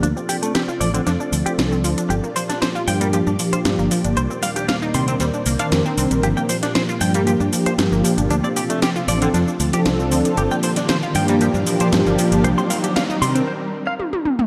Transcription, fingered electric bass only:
X:1
M:4/4
L:1/16
Q:1/4=116
K:Gm
V:1 name="Fingered electric bass" clef=bass
D,, z4 z A,,, z F,, z D,, z C,,2 D,, z | G,,, z4 z G,,2 z G,, z2 G,, G,,, z G,,, | C,, z4 z C, z E,, z C,, z F,, z C,, B,,, | G,,, z4 z G,,2 z G,, z2 G,, G,,, z G,,, |
D,, z4 z A,,, z F,, z D,, z C,,2 D,, z | G,,, z4 z G,,2 z G,, z2 G,, G,,, z G,,, | C,, z4 z C, z8 z |]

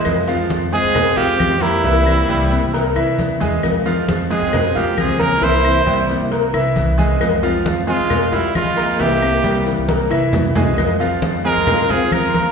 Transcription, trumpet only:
X:1
M:4/4
L:1/8
Q:1/4=134
K:Fm
V:1 name="Trumpet"
z3 A2 G2 =E- | =E6 z2 | z3 A2 G A B | c3 z4 z |
z3 F2 =E F2 | G3 z4 z | z3 B2 A B2 |]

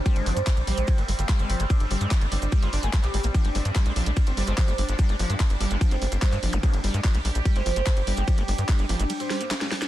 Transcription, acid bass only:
X:1
M:4/4
L:1/16
Q:1/4=146
K:Gphr
V:1 name="Acid bass" clef=bass
G, A, F, B, G, z G, A, F, B, G, z G, A, F, B, | G, z G, A, F, B, G, z G, A, D A, G, z A, B, | F, B, G, z G, A, F, B, G, z G, A, F, B, G, z | G, A, F, B, G, z G, A, F, B, G, z G, A, F, B, |
G, z G, A, F, B, G, z G, A, F, B, G, z G, A, | F, B, G, z G, A, F, B, G, z G, D G, A, G, z |]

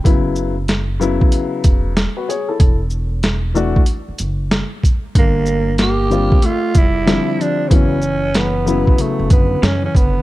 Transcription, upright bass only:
X:1
M:4/4
L:1/16
Q:"Swing 16ths" 1/4=94
K:Edor
V:1 name="Upright bass" clef=bass
F,,,6- F,,, z3 E,,,3 z3 | E,,,6- E,,, z3 F,,,3 z3 | G,,,6- G,,, z3 =F,,,3 z3 | F,,,6- F,,, z2 F,,, F,,2 F,,2 F,,,2 |]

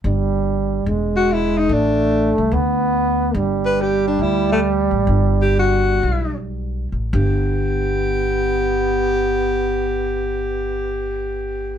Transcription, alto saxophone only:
X:1
M:4/4
L:1/8
Q:"Swing" 1/4=131
K:G
V:1 name="Alto saxophone"
z4 z F E _E | D3 z4 z | z B G D E A, z2 | z G F3 z3 |
G8- | G8 |]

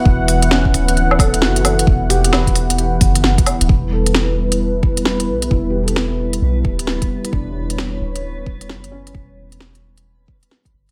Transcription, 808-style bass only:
X:1
M:4/4
L:1/16
Q:"Swing 16ths" 1/4=132
K:Edor
V:1 name="808-style bass" clef=bass
E,,,6 D,,,6 F,,,4 | E,,,8- E,,,2 F,,,4 z D,,, | E,,,12- E,,,2 B,,,2 | E,,,8 B,,,2 z6 |
E,,,6 D,,,6 F,,,4 | E,,,8- E,,,2 z4 G,,,2 |]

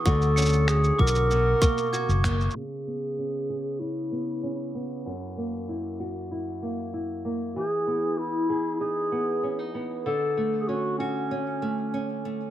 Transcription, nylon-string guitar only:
X:1
M:4/4
L:1/16
Q:1/4=96
K:C#dor
V:1 name="Nylon-string guitar"
[=D,F]2 C4 F2 B,,2 A,2 F2 A,2 | C,2 B,2 C2 G2 C2 B,2 C2 B,2 | F,,2 A,2 E2 F2 E2 A,2 E2 A,2 | E,2 B,4 G2 D2 B,2 C D B,2 |
=D,2 =A,2 C2 F2 C2 A,2 C2 A,2 |]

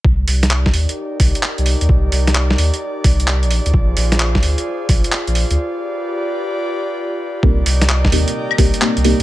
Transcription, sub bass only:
X:1
M:4/4
L:1/16
Q:"Swing 16ths" 1/4=130
K:Cm
V:1 name="Sub bass" clef=bass
C,,2 C,,4 E,, z3 C,, z2 C,,2 E,, | C,,2 C,,4 E,, z3 C,,3 B,,,2 D,, | B,,,2 B,,,4 D,, z3 B,,, z2 B,,,2 D,, | z16 |
C,,2 C,,4 E,, z3 C,, z2 C,,2 z |]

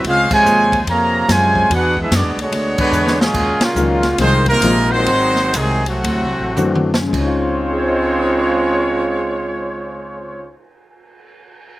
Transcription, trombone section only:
X:1
M:4/4
L:1/8
Q:"Swing" 1/4=131
K:Db
V:1 name="Trombone section" clef=bass
[A,CF] [C,F,A,]3 [C,F,B,]2 [C,F,A,]2 | [=B,=D^F] [^G,B,=E] [G,B,D] [=D,G,D]2 [D,G,B,]2 [_B,,^C,G,]- | [B,,^C,^G,] [B,,D,F]3 [E,A,=C] [=C,E,B,]2 [E,_G,C]- | [E,G,C]2 [C,E,A,] [=A,,C,G,]4 z |
[D,A,CF]8- | [D,A,CF]8 |]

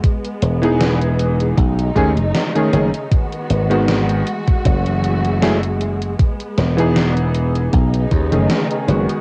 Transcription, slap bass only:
X:1
M:4/4
L:1/16
Q:"Swing 16ths" 1/4=78
K:E
V:1 name="Slap bass" clef=bass
z2 E,,,6 B,,,2 D,, F,,, z2 F,,, z | z2 G,,,4 z2 F,,,8 | z2 E,,,6 B,,,2 D,, F,,, z2 F,,, z |]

